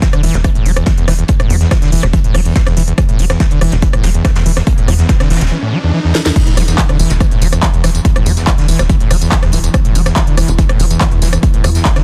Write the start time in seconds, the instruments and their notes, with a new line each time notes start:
0.02 acid bass E3, kick, snare, closed hi-hat
0.13 acid bass D3, cross-stick, closed hi-hat
0.23 analog synth bass E1, acid bass E3, closed hi-hat, open hi-hat
0.34 analog synth bass E1, acid bass A2, snare, closed hi-hat
0.44 acid bass E3, kick, cross-stick, closed hi-hat
0.55 acid bass A2, closed hi-hat
0.65 analog synth bass E1, acid bass G3, closed hi-hat, open hi-hat
0.76 acid bass E2, cross-stick, closed hi-hat
0.86 acid bass E3, kick, snare, closed hi-hat
0.98 acid bass E2, closed hi-hat
1.08 analog synth bass E1, acid bass E3, cross-stick, snare, closed hi-hat, open hi-hat
1.19 acid bass E2, closed hi-hat
1.28 acid bass E2, kick, closed hi-hat
1.40 acid bass A2, cross-stick, closed hi-hat
1.49 analog synth bass E2, acid bass G3, closed hi-hat, open hi-hat
1.61 acid bass E2, snare, closed hi-hat
1.71 acid bass E3, kick, cross-stick, snare, closed hi-hat
1.82 acid bass D3, snare, closed hi-hat
1.92 analog synth bass E1, acid bass E3, closed hi-hat, open hi-hat
2.03 analog synth bass E1, acid bass A2, cross-stick, snare, closed hi-hat
2.13 acid bass E3, kick, closed hi-hat
2.24 acid bass A2, closed hi-hat
2.34 analog synth bass E1, acid bass G3, cross-stick, open hi-hat
2.45 acid bass E2, closed hi-hat
2.56 acid bass E3, kick, snare, closed hi-hat
2.66 acid bass E2, cross-stick, snare, closed hi-hat
2.77 analog synth bass E1, acid bass E3, closed hi-hat, open hi-hat
2.88 acid bass E2, closed hi-hat
2.98 acid bass E2, kick, cross-stick, closed hi-hat, riser
3.09 acid bass A2, closed hi-hat
3.19 analog synth bass E1, acid bass G3, closed hi-hat, open hi-hat
3.30 acid bass E2, cross-stick, snare, closed hi-hat
3.40 acid bass E3, kick, snare, closed hi-hat
3.51 acid bass D3, closed hi-hat
3.61 analog synth bass E1, acid bass E3, cross-stick, closed hi-hat, open hi-hat
3.72 analog synth bass E1, acid bass A2, snare, closed hi-hat
3.82 acid bass E3, kick, closed hi-hat
3.93 acid bass A2, cross-stick, closed hi-hat
4.03 analog synth bass E1, acid bass G3, snare, closed hi-hat, open hi-hat
4.14 acid bass E2, closed hi-hat
4.25 acid bass E3, kick, cross-stick, snare, closed hi-hat
4.36 acid bass E2, snare, closed hi-hat
4.46 analog synth bass E1, acid bass E3, open hi-hat
4.56 acid bass E2, cross-stick, snare, closed hi-hat
4.67 acid bass E2, kick, closed hi-hat
4.78 acid bass A2, closed hi-hat
4.88 analog synth bass E2, acid bass G3, cross-stick, closed hi-hat, open hi-hat
4.99 acid bass E2, snare, closed hi-hat
5.09 acid bass E3, kick, snare, closed hi-hat
5.20 acid bass D3, cross-stick, snare, closed hi-hat
5.30 analog synth bass E1, acid bass E3, snare, closed hi-hat, open hi-hat
5.36 snare, closed hi-hat
5.41 analog synth bass E1, acid bass A2, snare, closed hi-hat
5.46 snare, closed hi-hat
5.51 acid bass E3
5.62 acid bass A2
5.73 acid bass G3
5.83 acid bass E2
5.94 acid bass E3
6.05 acid bass E2
6.15 acid bass E3, snare
6.26 acid bass E2, snare
6.36 acid bass E2, ambient pad E3, kick, closed hi-hat, crash, tambourine
6.47 acid bass A2, closed hi-hat
6.57 analog synth bass E1, acid bass G3, cross-stick, closed hi-hat, open hi-hat, tambourine
6.68 acid bass E2, snare, closed hi-hat, tambourine
6.78 acid bass E3, kick, snare, clap, closed hi-hat, tambourine
6.89 acid bass D3, cross-stick, closed hi-hat
6.99 analog synth bass E1, acid bass E3, closed hi-hat, open hi-hat, tambourine
7.10 analog synth bass E1, acid bass A2, snare, closed hi-hat, tambourine
7.20 acid bass E3, kick, cross-stick, closed hi-hat, tambourine
7.31 acid bass A2, closed hi-hat
7.42 analog synth bass E1, acid bass G3, closed hi-hat, open hi-hat, tambourine
7.52 acid bass E2, cross-stick, closed hi-hat, tambourine
7.62 acid bass E3, kick, snare, clap, closed hi-hat, tambourine
7.74 acid bass E2, closed hi-hat
7.84 analog synth bass E1, acid bass E3, cross-stick, snare, closed hi-hat, open hi-hat, tambourine
7.95 acid bass E2, closed hi-hat, tambourine
8.05 acid bass E2, kick, closed hi-hat, tambourine
8.16 acid bass A2, cross-stick, closed hi-hat
8.25 analog synth bass E2, acid bass G3, closed hi-hat, open hi-hat, tambourine
8.37 acid bass E2, snare, closed hi-hat, tambourine
8.47 acid bass E3, kick, cross-stick, snare, clap, closed hi-hat, tambourine
8.58 acid bass D3, snare, closed hi-hat
8.68 analog synth bass E1, acid bass E3, closed hi-hat, open hi-hat, tambourine
8.79 analog synth bass E1, acid bass A2, cross-stick, snare, closed hi-hat, tambourine
8.89 acid bass E3, kick, closed hi-hat, tambourine
9.00 acid bass A2, closed hi-hat
9.11 analog synth bass E1, acid bass G3, cross-stick, open hi-hat, tambourine
9.21 acid bass E2, closed hi-hat, tambourine
9.32 acid bass E3, kick, snare, clap, closed hi-hat, tambourine
9.43 acid bass E2, cross-stick, snare, closed hi-hat
9.52 analog synth bass D1, acid bass E3, closed hi-hat, open hi-hat, tambourine
9.64 acid bass E2, closed hi-hat, tambourine
9.74 acid bass E2, kick, cross-stick, closed hi-hat, tambourine
9.85 acid bass A2, closed hi-hat
9.95 analog synth bass E1, acid bass G3, closed hi-hat, open hi-hat, tambourine
10.06 acid bass E2, cross-stick, snare, closed hi-hat, tambourine
10.16 acid bass E3, kick, snare, clap, closed hi-hat, tambourine
10.27 acid bass D3, closed hi-hat
10.37 analog synth bass E1, acid bass E3, cross-stick, closed hi-hat, open hi-hat, tambourine
10.48 analog synth bass E1, acid bass A2, closed hi-hat, tambourine
10.59 acid bass E3, kick, closed hi-hat, tambourine
10.69 acid bass A2, cross-stick, closed hi-hat
10.80 analog synth bass E1, acid bass G3, closed hi-hat, open hi-hat, tambourine
10.91 acid bass E2, closed hi-hat, tambourine
11.00 acid bass E3, kick, cross-stick, snare, clap, closed hi-hat, tambourine
11.12 acid bass E2, closed hi-hat
11.22 analog synth bass E1, acid bass E3, snare, closed hi-hat, open hi-hat, tambourine
11.33 acid bass E2, cross-stick, closed hi-hat, tambourine
11.43 acid bass E2, kick, closed hi-hat, tambourine
11.54 acid bass A2, closed hi-hat
11.64 analog synth bass E2, acid bass G3, cross-stick, closed hi-hat, open hi-hat, tambourine
11.75 acid bass E2, snare, closed hi-hat, tambourine
11.85 acid bass E3, kick, snare, clap, closed hi-hat, tambourine
11.96 acid bass D3, cross-stick, snare, closed hi-hat